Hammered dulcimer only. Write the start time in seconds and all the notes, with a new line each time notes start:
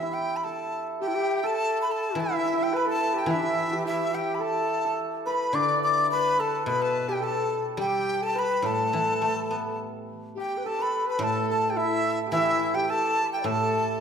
Already playing: G4
0.03 E4
0.44 A4
1.02 G4
1.43 A4
2.16 E4
2.23 E4
2.31 E4
2.38 E4
2.45 E4
2.53 E4
2.61 E4
2.73 B4
2.87 A4
3.14 G4
3.28 E4
3.71 G4
3.85 E4
4.14 G4
4.40 A4
4.85 A4
5.27 B4
5.55 D5
6.13 B4
6.39 A4
6.67 B4
7.08 G4
7.22 A4
7.79 G4
8.36 B4
8.64 A4
10.37 G4
10.66 A4
10.79 B4
11.23 A4
11.50 A4
11.77 E4
12.26 G4
12.33 E4
12.74 G4
12.90 A4
13.45 A4